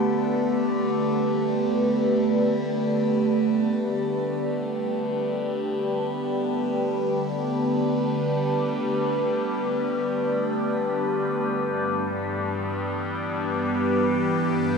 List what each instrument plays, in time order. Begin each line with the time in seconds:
Already playing: ambient pad D3 A3 B3 G4 B4, synth drone G3 D4
11.49 ambient pad G2
11.62 ambient pad G3
11.79 ambient pad E3
12.09 ambient pad B3
12.89 ambient pad G4
13.10 ambient pad B4